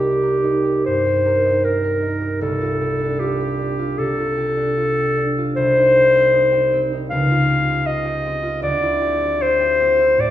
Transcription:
0.00 2.40 C2 soft
0.00 0.42 D#4 soft
0.00 0.87 G4 medium
0.00 0.63 G4 soft
0.00 0.21 A#4 soft
0.23 1.24 A#4 soft
0.43 1.44 D#4 soft
0.65 1.05 G4 soft
0.85 2.46 G2 soft
0.85 1.66 C5 medium
1.06 1.63 G4 soft
1.26 1.83 A#4 soft
1.45 2.01 D#4 soft
1.64 2.20 G4 soft
1.64 2.41 A#4 soft
1.84 2.46 A#4 soft
2.02 2.45 D#4 soft
2.21 2.80 G4 soft
2.41 5.56 C2 soft
2.41 3.21 A4 medium
2.61 3.18 F4 soft
2.81 3.39 G4 soft
3.00 3.57 D4 soft
3.19 3.78 F4 soft
3.19 4.00 G4 medium
3.40 4.36 G4 soft
3.59 4.55 D4 soft
3.79 4.16 F4 soft
3.98 5.58 C3 soft
3.98 5.39 A4 medium
4.18 4.76 F4 soft
4.38 4.96 G4 soft
4.57 5.16 D4 soft
4.77 5.37 F4 soft
4.97 5.95 G4 soft
5.17 5.59 D4 soft
5.38 5.59 F4 soft
5.56 7.16 C2 soft
5.56 6.82 C5 medium
5.77 6.32 D#4 soft
5.96 6.51 G4 soft
6.15 6.71 C4 soft
6.33 6.91 D#4 soft
6.52 7.48 G4 soft
6.73 7.67 C4 soft
6.93 7.15 D#4 soft
7.10 8.67 C#2 soft
7.10 7.88 F5 medium
7.31 7.85 F4 soft
7.49 8.04 G4 soft
7.68 8.24 C4 soft
7.86 8.42 F4 soft
7.86 8.62 D#5 medium
8.05 9.00 G4 soft
8.25 9.19 C4 soft
8.43 10.30 F4 soft
8.62 10.30 D2 soft
8.62 9.43 D5 medium
8.82 9.39 E4 soft
9.02 9.59 G4 soft
9.20 9.79 C4 soft
9.40 9.97 E4 soft
9.40 10.22 C5 medium
9.60 10.30 G4 soft
9.81 10.30 C4 soft
9.99 10.30 E4 soft
10.17 10.30 A2 soft
10.17 10.30 D5 medium

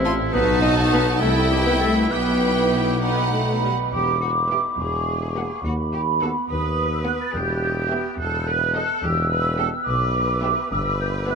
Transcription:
0.00 0.19 A1 medium
0.00 0.35 E4 medium
0.04 0.13 F4 medium
0.04 0.12 A4 medium
0.04 0.13 C6 medium
0.32 1.23 B1 medium
0.32 1.17 B1 medium
0.32 0.46 B3 medium
0.32 0.42 B3 medium
0.32 1.21 D#4 medium
0.32 1.17 D#4 medium
0.32 1.17 F#4 medium
0.32 0.60 B4 medium
0.32 0.61 B4 loud
0.32 1.17 A5 medium
0.62 0.75 D#4 medium
0.62 0.71 D#4 medium
0.62 0.75 D#5 loud
0.62 0.68 D#5 medium
0.91 1.04 B3 medium
0.91 1.00 B3 medium
0.91 0.98 B4 medium
0.91 1.05 B4 medium
1.19 2.10 C2 medium
1.19 2.09 C2 medium
1.19 1.34 A3 medium
1.19 1.30 A3 medium
1.19 2.10 E4 medium
1.19 2.09 E4 medium
1.19 2.13 E4 medium
1.19 1.49 A4 medium
1.19 1.50 A4 medium
1.19 2.09 G5 medium
1.50 1.65 G3 medium
1.50 1.57 G3 medium
1.50 1.56 G4 medium
1.50 1.65 G4 medium
1.64 1.72 B3 medium
1.64 1.80 B3 medium
1.64 1.70 B4 medium
1.64 1.73 B4 medium
1.79 1.93 A3 medium
1.79 2.10 A3 medium
1.79 1.86 A4 medium
1.79 1.94 A4 medium
2.10 3.69 B1 medium
2.10 3.01 B3 medium
2.10 3.01 E4 medium
2.10 3.48 G4 medium
2.10 3.01 B4 medium
2.10 3.01 G5 medium
3.03 3.31 B3 medium
3.03 3.71 D#4 medium
3.03 3.71 F#5 medium
3.03 3.89 B5 medium
3.33 3.63 A3 medium
3.64 3.72 G3 medium
3.92 4.63 E1 medium
3.92 4.62 E2 medium
3.92 4.20 G4 medium
3.92 4.79 D6 medium
4.22 4.30 F#4 medium
4.51 4.72 B3 soft
4.51 4.59 G4 medium
4.51 4.72 G4 medium
4.51 4.72 E5 medium
4.79 5.48 E1 medium
4.79 5.48 E2 medium
4.79 5.63 G#4 medium
4.79 5.65 C#6 medium
5.36 5.58 A#3 medium
5.36 5.58 F#4 medium
5.36 5.58 F#5 medium
5.65 6.33 D#2 medium
5.65 5.73 F#4 medium
5.65 6.49 B5 medium
5.93 6.01 G4 medium
6.22 6.43 B3 medium
6.22 6.43 F#4 medium
6.22 6.30 A4 medium
6.22 6.44 F#5 medium
6.50 7.17 D#2 medium
6.50 7.18 D#2 medium
6.50 7.33 B4 medium
6.50 6.91 D#6 medium
6.92 6.98 E6 medium
7.05 7.27 B3 medium
7.05 7.28 F#4 medium
7.05 7.27 F#5 medium
7.05 7.12 F#6 medium
7.20 7.34 A6 medium
7.34 8.02 E1 medium
7.34 8.02 E2 medium
7.34 8.19 G4 medium
7.34 7.97 G6 medium
7.90 8.12 B3 medium
7.90 8.12 G4 medium
7.90 8.12 E5 medium
8.19 8.87 E1 medium
8.19 8.87 E2 medium
8.19 8.47 A4 medium
8.19 9.02 F#6 medium
8.48 8.76 B4 medium
8.75 8.96 B3 medium
8.75 9.03 A4 medium
8.75 8.96 A4 medium
8.75 8.96 D#5 medium
9.03 9.70 E1 medium
9.03 9.71 E2 medium
9.03 9.31 G4 medium
9.03 9.87 E6 loud
9.31 9.59 B4 medium
9.59 9.80 B3 medium
9.59 9.80 G4 medium
9.59 9.67 A4 medium
9.59 9.80 E5 medium
9.87 10.55 B1 medium
9.87 10.70 B4 medium
9.87 10.72 D6 medium
10.43 10.64 B3 medium
10.43 10.65 G4 medium
10.43 10.64 E5 medium
10.72 11.35 G1 medium
10.72 11.35 B4 medium
10.72 11.00 E6 medium
11.00 11.07 G6 medium
11.27 11.35 B3 medium
11.27 11.35 B4 medium
11.27 11.35 E5 medium
11.27 11.35 F#6 medium

